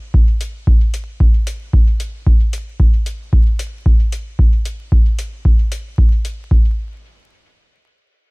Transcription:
0.14 kick loud
0.41 closed hi-hat medium
0.67 kick loud
0.94 closed hi-hat medium
1.20 kick loud
1.47 closed hi-hat medium
1.73 kick loud
2.00 closed hi-hat medium
2.27 kick loud
2.53 closed hi-hat medium
2.80 kick loud
3.06 closed hi-hat medium
3.33 kick loud
3.59 closed hi-hat medium
3.86 kick loud
4.12 closed hi-hat medium
4.39 kick loud
4.65 closed hi-hat medium
4.92 kick loud
5.19 closed hi-hat medium
5.45 kick loud
5.72 closed hi-hat medium
5.98 kick loud
6.25 closed hi-hat medium
6.51 kick loud

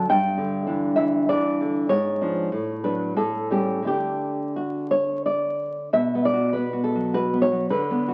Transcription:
0.09 1.86 G2 medium
0.09 0.95 G5 medium
0.38 1.29 D3 medium
0.67 0.95 E3 soft
0.67 1.27 D4 medium
0.96 1.28 E3 medium
0.96 1.27 E5 medium
1.29 1.86 E3 medium
1.29 1.86 D4 medium
1.29 1.87 D5 medium
1.61 1.91 D3 medium
1.89 2.48 G#2 medium
1.89 2.78 C#5 loud
2.21 2.48 F3 soft
2.21 2.48 D4 soft
2.52 3.15 A2 medium
2.84 3.14 F#3 soft
2.84 3.14 D4 soft
2.84 3.15 B4 medium
3.17 3.84 A2 medium
3.17 3.49 A4 medium
3.51 3.82 G3 soft
3.51 3.83 C#4 soft
3.51 3.85 G4 medium
3.82 5.89 D3 soft
3.82 5.90 A3 soft
3.82 5.90 D4 soft
3.87 4.55 G4 medium
4.56 4.90 F#4 soft
4.91 5.25 C#5 medium
5.26 5.91 D5 medium
5.93 7.65 B2 medium
5.93 6.23 E5 medium
6.15 6.53 B3 soft
6.25 6.54 D5 medium
6.34 6.72 F#4 soft
6.53 7.32 B3 soft
6.53 6.82 B4 medium
6.73 7.13 F#4 medium
6.84 7.12 A4 medium
6.95 7.51 F#3 soft
7.14 7.70 F#4 medium
7.14 7.41 B4 medium
7.33 7.70 B3 soft
7.42 7.68 C#5 medium
7.52 7.70 F#3 soft
7.70 8.14 D3 medium
7.70 8.14 B4 medium
7.91 8.14 B3 medium
8.08 8.14 F#4 medium

